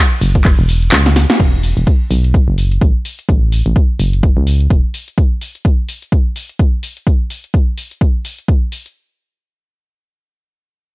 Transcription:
0.12 shaker soft
0.21 0.55 F#1 medium
0.21 open hi-hat medium
0.21 shaker medium
0.35 kick medium
0.35 closed hi-hat medium
0.35 shaker soft
0.45 kick loud
0.45 clap medium
0.45 closed hi-hat medium
0.45 ride medium
0.45 shaker soft
0.59 0.90 E1 medium
0.59 shaker soft
0.69 open hi-hat loud
0.69 shaker medium
0.82 closed hi-hat medium
0.82 shaker soft
0.92 1.26 C#2 loud
0.92 snare medium
0.92 clap loud
0.92 closed hi-hat medium
0.92 ride medium
0.92 shaker soft
1.06 snare medium
1.06 shaker soft
1.16 snare medium
1.16 open hi-hat medium
1.16 shaker medium
1.30 snare medium
1.30 closed hi-hat medium
1.30 shaker soft
1.40 1.73 E1 loud
1.40 kick loud
1.40 closed hi-hat medium
1.40 crash medium
1.63 open hi-hat loud
1.77 1.85 E1 medium
1.77 closed hi-hat medium
1.87 kick loud
1.87 closed hi-hat medium
2.11 2.44 B1 medium
2.11 open hi-hat medium
2.24 closed hi-hat medium
2.34 kick loud
2.34 closed hi-hat medium
2.48 2.79 F#1 loud
2.58 open hi-hat loud
2.72 closed hi-hat medium
2.81 2.93 A1 medium
2.81 kick loud
2.81 closed hi-hat medium
3.05 open hi-hat medium
3.19 closed hi-hat medium
3.29 3.62 A1 loud
3.29 kick loud
3.29 closed hi-hat medium
3.52 open hi-hat loud
3.66 3.74 A1 medium
3.66 closed hi-hat soft
3.76 kick loud
3.76 closed hi-hat medium
3.99 4.33 F#1 medium
3.99 open hi-hat medium
4.13 closed hi-hat soft
4.23 kick loud
4.23 closed hi-hat medium
4.37 4.68 C#2 loud
4.47 open hi-hat loud
4.60 closed hi-hat soft
4.70 4.82 E1 medium
4.70 kick loud
4.70 closed hi-hat medium
4.94 open hi-hat medium
5.08 closed hi-hat medium
5.18 kick loud
5.18 closed hi-hat medium
5.41 open hi-hat loud
5.55 closed hi-hat soft
5.65 kick loud
5.65 closed hi-hat medium
5.89 open hi-hat medium
6.02 closed hi-hat soft
6.12 kick loud
6.12 closed hi-hat medium
6.36 open hi-hat loud
6.49 closed hi-hat soft
6.59 kick loud
6.59 closed hi-hat medium
6.83 open hi-hat medium
6.97 closed hi-hat soft
7.07 kick loud
7.07 closed hi-hat medium
7.30 open hi-hat loud
7.44 closed hi-hat soft
7.54 kick loud
7.54 closed hi-hat medium
7.78 open hi-hat medium
7.91 closed hi-hat soft
8.01 kick loud
8.01 closed hi-hat medium
8.25 open hi-hat loud
8.38 closed hi-hat soft
8.48 kick loud
8.48 closed hi-hat medium
8.72 open hi-hat medium
8.86 closed hi-hat soft

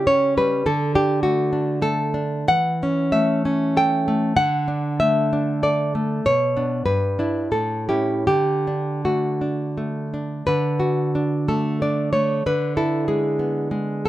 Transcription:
0.00 0.63 C#3 soft
0.00 0.36 G3 soft
0.07 0.66 C#4 soft
0.07 0.36 C#5 medium
0.37 0.66 G3 soft
0.37 0.65 B4 medium
0.66 2.45 D3 medium
0.66 0.94 A4 medium
0.95 1.51 D4 soft
0.95 1.23 G4 medium
1.23 1.81 A3 soft
1.23 1.80 F#4 medium
1.53 2.13 D4 soft
1.82 2.49 A3 soft
1.82 2.46 A4 medium
2.14 2.49 D4 soft
2.48 4.33 E3 medium
2.48 3.10 F#5 medium
2.83 3.44 C#4 soft
3.12 4.07 A3 soft
3.12 3.73 E5 medium
3.45 4.36 C#4 soft
3.77 4.38 A4 soft
3.77 4.35 G5 medium
4.08 4.38 A3 soft
4.36 6.20 D3 medium
4.36 4.98 F#5 medium
4.68 5.32 D4 soft
5.00 5.94 A3 soft
5.00 5.60 E5 medium
5.33 6.25 D4 soft
5.63 6.24 A4 soft
5.63 5.92 D5 medium
5.95 6.25 A3 soft
6.26 6.85 B2 soft
6.26 6.84 C#5 medium
6.57 6.84 B3 soft
6.57 6.84 D4 soft
6.86 7.50 G2 soft
6.86 7.49 B4 medium
7.19 7.49 D4 soft
7.19 7.50 E4 soft
7.52 8.25 A2 soft
7.52 7.87 A4 medium
7.89 8.24 C#4 soft
7.89 8.24 E4 soft
7.89 8.26 G4 medium
8.27 10.42 D3 soft
8.27 9.01 G4 medium
8.67 9.40 D4 soft
9.05 9.76 A3 soft
9.05 10.07 F#4 soft
9.41 10.12 D4 soft
9.78 10.47 A3 soft
10.14 10.47 D4 soft
10.47 12.42 D3 medium
10.47 11.43 B4 medium
10.80 11.80 F#4 soft
11.15 11.82 D4 soft
11.48 12.12 A3 soft
11.48 11.80 A4 medium
11.82 12.46 D4 soft
11.82 12.12 D5 medium
12.13 12.45 A3 soft
12.13 12.43 C#5 medium
12.46 14.09 D3 soft
12.46 12.76 B4 medium
12.77 13.72 E4 soft
12.77 13.07 A4 medium
13.08 13.70 G#3 soft
13.08 14.00 G#4 medium
13.39 14.04 B3 soft
13.71 14.09 G#3 soft
14.05 14.09 B3 soft
14.05 14.09 A4 medium

